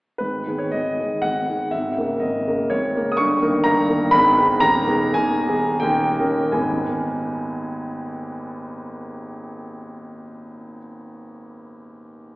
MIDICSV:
0, 0, Header, 1, 2, 480
1, 0, Start_track
1, 0, Key_signature, 5, "minor"
1, 0, Tempo, 516796
1, 198, Time_signature, 3, 2, 24, 8
1, 1162, Tempo, 482315
1, 4522, Tempo, 542986
1, 5002, Tempo, 662983
1, 5482, Tempo, 699301
1, 6922, Tempo, 666667
1, 7882, Tempo, 704225
1, 9991, End_track
2, 0, Start_track
2, 0, Title_t, "Grand piano"
2, 0, Program_c, 0, 0
2, 170, Note_on_c, 0, 71, 63
2, 190, Note_on_c, 0, 32, 41
2, 190, Note_on_c, 0, 44, 33
2, 383, Control_c, 0, 64, 127
2, 427, Note_off_c, 0, 32, 0
2, 427, Note_off_c, 0, 44, 0
2, 437, Note_on_c, 0, 51, 33
2, 441, Note_on_c, 0, 59, 29
2, 441, Note_on_c, 0, 68, 35
2, 543, Note_on_c, 0, 73, 60
2, 547, Note_off_c, 0, 71, 0
2, 660, Note_off_c, 0, 51, 0
2, 662, Note_off_c, 0, 59, 0
2, 662, Note_off_c, 0, 68, 0
2, 664, Note_on_c, 0, 75, 66
2, 676, Note_off_c, 0, 73, 0
2, 681, Note_on_c, 0, 32, 36
2, 683, Note_on_c, 0, 44, 37
2, 698, Control_c, 0, 64, 0
2, 919, Note_off_c, 0, 32, 0
2, 920, Note_off_c, 0, 44, 0
2, 923, Note_on_c, 0, 51, 31
2, 930, Note_on_c, 0, 59, 32
2, 933, Note_on_c, 0, 68, 36
2, 1130, Note_on_c, 0, 78, 72
2, 1136, Note_off_c, 0, 51, 0
2, 1140, Note_off_c, 0, 59, 0
2, 1141, Note_off_c, 0, 68, 0
2, 1147, Note_on_c, 0, 32, 42
2, 1148, Note_on_c, 0, 44, 41
2, 1152, Note_off_c, 0, 75, 0
2, 1389, Note_off_c, 0, 32, 0
2, 1389, Note_off_c, 0, 44, 0
2, 1402, Note_on_c, 0, 51, 35
2, 1403, Note_on_c, 0, 59, 32
2, 1409, Note_on_c, 0, 68, 35
2, 1614, Note_off_c, 0, 51, 0
2, 1615, Note_off_c, 0, 59, 0
2, 1618, Note_off_c, 0, 68, 0
2, 1620, Note_on_c, 0, 76, 65
2, 1621, Note_off_c, 0, 78, 0
2, 1644, Note_on_c, 0, 44, 41
2, 1645, Note_on_c, 0, 32, 44
2, 1794, Control_c, 0, 64, 127
2, 1872, Note_off_c, 0, 32, 0
2, 1872, Note_off_c, 0, 44, 0
2, 1877, Note_on_c, 0, 49, 37
2, 1886, Note_on_c, 0, 58, 35
2, 1892, Note_on_c, 0, 70, 39
2, 2103, Note_off_c, 0, 49, 0
2, 2103, Note_on_c, 0, 75, 62
2, 2108, Note_off_c, 0, 58, 0
2, 2111, Note_off_c, 0, 70, 0
2, 2118, Note_off_c, 0, 76, 0
2, 2123, Note_on_c, 0, 44, 41
2, 2125, Note_on_c, 0, 32, 41
2, 2372, Note_off_c, 0, 44, 0
2, 2373, Note_off_c, 0, 32, 0
2, 2380, Note_on_c, 0, 49, 37
2, 2381, Note_on_c, 0, 70, 43
2, 2384, Note_on_c, 0, 58, 38
2, 2600, Note_off_c, 0, 49, 0
2, 2601, Note_off_c, 0, 70, 0
2, 2601, Note_on_c, 0, 73, 76
2, 2603, Note_off_c, 0, 58, 0
2, 2614, Note_off_c, 0, 75, 0
2, 2619, Note_on_c, 0, 32, 49
2, 2620, Note_on_c, 0, 44, 46
2, 2638, Control_c, 0, 64, 0
2, 2850, Note_off_c, 0, 32, 0
2, 2850, Note_off_c, 0, 44, 0
2, 2859, Note_on_c, 0, 49, 42
2, 2863, Note_on_c, 0, 58, 43
2, 2864, Note_on_c, 0, 70, 44
2, 3011, Note_off_c, 0, 73, 0
2, 3018, Note_on_c, 0, 87, 71
2, 3062, Note_off_c, 0, 49, 0
2, 3064, Note_off_c, 0, 58, 0
2, 3065, Note_off_c, 0, 70, 0
2, 3071, Note_on_c, 0, 85, 100
2, 3083, Note_off_c, 0, 87, 0
2, 3088, Note_on_c, 0, 31, 58
2, 3088, Note_on_c, 0, 43, 53
2, 3251, Control_c, 0, 64, 127
2, 3307, Note_off_c, 0, 31, 0
2, 3307, Note_off_c, 0, 43, 0
2, 3318, Note_on_c, 0, 51, 46
2, 3321, Note_on_c, 0, 58, 42
2, 3327, Note_on_c, 0, 70, 48
2, 3531, Note_off_c, 0, 51, 0
2, 3532, Note_off_c, 0, 58, 0
2, 3535, Note_off_c, 0, 70, 0
2, 3536, Note_on_c, 0, 82, 92
2, 3544, Note_off_c, 0, 85, 0
2, 3551, Note_on_c, 0, 43, 57
2, 3554, Note_on_c, 0, 31, 46
2, 3786, Note_off_c, 0, 43, 0
2, 3787, Note_off_c, 0, 31, 0
2, 3791, Note_on_c, 0, 51, 46
2, 3798, Note_on_c, 0, 58, 48
2, 3804, Note_on_c, 0, 70, 50
2, 4008, Note_on_c, 0, 83, 112
2, 4010, Note_off_c, 0, 51, 0
2, 4014, Note_off_c, 0, 58, 0
2, 4017, Note_off_c, 0, 70, 0
2, 4028, Note_off_c, 0, 82, 0
2, 4029, Note_on_c, 0, 32, 70
2, 4031, Note_on_c, 0, 44, 63
2, 4042, Control_c, 0, 64, 0
2, 4211, Control_c, 0, 64, 127
2, 4269, Note_off_c, 0, 32, 0
2, 4270, Note_off_c, 0, 44, 0
2, 4273, Note_on_c, 0, 51, 48
2, 4278, Note_on_c, 0, 59, 50
2, 4280, Note_on_c, 0, 68, 54
2, 4494, Note_off_c, 0, 51, 0
2, 4497, Note_off_c, 0, 59, 0
2, 4498, Note_off_c, 0, 68, 0
2, 4498, Note_on_c, 0, 82, 107
2, 4508, Note_off_c, 0, 83, 0
2, 4514, Note_on_c, 0, 39, 62
2, 4516, Note_on_c, 0, 27, 63
2, 4532, Control_c, 0, 64, 0
2, 4715, Control_c, 0, 64, 127
2, 4736, Note_off_c, 0, 39, 0
2, 4737, Note_off_c, 0, 27, 0
2, 4739, Note_on_c, 0, 51, 56
2, 4748, Note_on_c, 0, 59, 52
2, 4748, Note_on_c, 0, 68, 52
2, 4972, Note_off_c, 0, 51, 0
2, 4975, Note_on_c, 0, 80, 97
2, 4977, Note_off_c, 0, 59, 0
2, 4977, Note_off_c, 0, 68, 0
2, 4990, Note_on_c, 0, 27, 53
2, 4991, Note_off_c, 0, 82, 0
2, 4991, Note_on_c, 0, 39, 57
2, 5223, Note_off_c, 0, 27, 0
2, 5224, Note_off_c, 0, 39, 0
2, 5227, Note_on_c, 0, 51, 48
2, 5230, Note_on_c, 0, 59, 47
2, 5230, Note_on_c, 0, 68, 58
2, 5453, Note_off_c, 0, 51, 0
2, 5454, Note_off_c, 0, 59, 0
2, 5454, Note_off_c, 0, 68, 0
2, 5456, Note_on_c, 0, 79, 95
2, 5471, Note_off_c, 0, 80, 0
2, 5473, Note_on_c, 0, 27, 59
2, 5474, Note_on_c, 0, 39, 67
2, 5489, Control_c, 0, 64, 0
2, 5658, Control_c, 0, 64, 127
2, 5722, Note_off_c, 0, 27, 0
2, 5722, Note_off_c, 0, 39, 0
2, 5727, Note_on_c, 0, 51, 44
2, 5729, Note_on_c, 0, 61, 44
2, 5730, Note_on_c, 0, 70, 53
2, 5947, Note_off_c, 0, 51, 0
2, 5948, Note_off_c, 0, 61, 0
2, 5949, Note_off_c, 0, 70, 0
2, 5953, Note_on_c, 0, 32, 58
2, 5954, Note_on_c, 0, 80, 66
2, 5956, Note_on_c, 0, 39, 49
2, 5956, Note_on_c, 0, 56, 47
2, 5959, Note_on_c, 0, 59, 47
2, 5959, Note_on_c, 0, 63, 44
2, 5963, Note_off_c, 0, 79, 0
2, 5963, Note_on_c, 0, 68, 46
2, 5986, Control_c, 0, 64, 0
2, 6158, Control_c, 0, 64, 127
2, 8907, Note_off_c, 0, 32, 0
2, 8908, Note_off_c, 0, 80, 0
2, 8909, Note_off_c, 0, 39, 0
2, 8910, Note_off_c, 0, 56, 0
2, 8912, Note_off_c, 0, 63, 0
2, 8913, Note_off_c, 0, 59, 0
2, 8917, Note_off_c, 0, 68, 0
2, 9991, End_track
0, 0, End_of_file